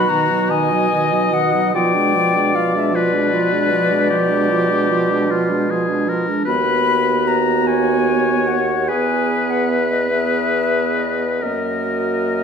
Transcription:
Already playing: B2 F#4 B5
0.09 D#3 F#4 A#5
0.30 F#3 D#4
0.50 D#3 F#4 D#5 G#5
0.71 F#3 D#4
0.92 D#3 F#4
1.12 F#3 D#4
1.33 D#3 F#4 F#5
1.53 F#3 D#4
1.73 B2 F3 F4 D5 G5
1.93 G#3 D4
2.14 F3 F4
2.34 G#3 D4
2.54 F3 F4 F5
2.74 G#3 D4 E5
2.94 F3 F4 B4 D5
3.13 G#3 D4
3.32 F3 F4
3.52 G#3 D4
3.71 F3 F4
3.91 G#3 D4
4.10 F3 F4 G4
4.29 G#3 D4
4.50 F3 F4
4.70 G#3 D4
4.90 F3 F4
5.10 G#3 D4
5.30 F3 F4
5.49 G#3 D4
5.69 F3 F4 G#4
5.88 G#3 D4
6.08 F3 F4 A#4
6.28 G#3 D4
6.45 D#2 B3 F#4 B4 B5
7.27 A#5
7.67 C#5 G#5
8.47 F#5
8.88 E2 B3 G#4 B4 G#5
9.50 F#5
9.69 E5
9.91 D#5
10.11 B3 G#4 E5
10.97 D#5
11.41 F#2 A#3 F#4 A#4 D#5

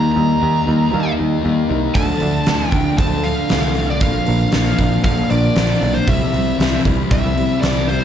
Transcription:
Already playing: D#3 G3 A#3 D#4 A#5
0.12 D#4 A#5
0.16 D#2 G3 A#3
0.40 D#2 D#3 A#3 D#4
0.65 D#2 D#3 G3 A#3 D#4
0.90 D#2 D#3 G3 A#3 D#4
1.17 D#2 G3 A#3 D#4
1.43 D#2 D#3 G3 A#3 D#4
1.67 C2 D#3 G3 A#3 D#4
1.94 D2 D3 F3 A3 D4 A5, kick, open hi-hat
2.20 D2 F3 A3 D4, open hi-hat
2.46 D2 D3 A3 D4, snare, open hi-hat
2.69 D2 D3 D4 G5, kick, open hi-hat
2.74 F3 A3
2.98 D2 D3 F3 A3 D4 A5, kick, open hi-hat
3.23 F3 A3 D4 F5, open hi-hat
3.47 D3 F3 A3 D4, snare, open hi-hat
3.52 C2
3.74 D3 F3 A3 D4, open hi-hat
3.90 D5
4.00 A#1 A#2 D3 F3 A#3 D4 F5, kick, open hi-hat
4.25 A#1 F3 A#3 D4, open hi-hat
4.52 A#1 A#2 F3 A#3, snare, open hi-hat
4.76 A#1 A#2 F3 A#3 D4, kick, open hi-hat
5.02 A#1 A#2 D3 F3 A#3 D4 F5, kick, open hi-hat
5.28 A#1 F3 A#3 D4 D5, open hi-hat
5.55 A#1 A#2 D3 F3 A#3 D4, snare, open hi-hat
5.81 B1 A#2 F3 A#3 D4, open hi-hat
5.94 C5
6.06 C2 C3 G3 C4 E4 E5, kick, open hi-hat
6.32 C2 G3 C4 E4, open hi-hat
6.58 C2 C3 G3 C4, snare, open hi-hat
6.84 C2 C3 G3 C4 E4, kick, open hi-hat
7.10 C2 C3 G3 C4 E4 E5, kick, open hi-hat
7.35 G3 C4 E4, open hi-hat
7.61 C2 C3 G3 C4 E4 D5, snare, open hi-hat
7.87 C3 G3 C4 E4 C5, open hi-hat

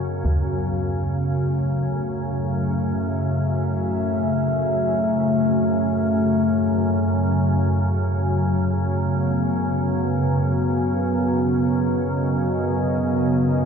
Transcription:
Already playing: F#2 C#3 B3 F#4 D#5
0.24 F#2 C#3 A3, taiko
1.67 E5
8.82 B3
11.25 D#5

